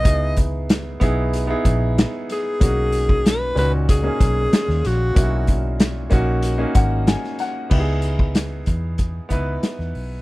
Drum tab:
CC |----------------|----------------|----------------|x---------------|
HH |x-x-x-x-x-x-x-x-|x-x-x-x-x-x-x-x-|x-x-x-x-x-x-x-x-|--x-x-x-x-x-x-o-|
SD |----o-------o-o-|----o-------ooo-|----o-------ooo-|----o-------oo--|
BD |o-o---o---o-----|o--o----o-o-----|o-o---o---o-----|o--o--o-o-o-----|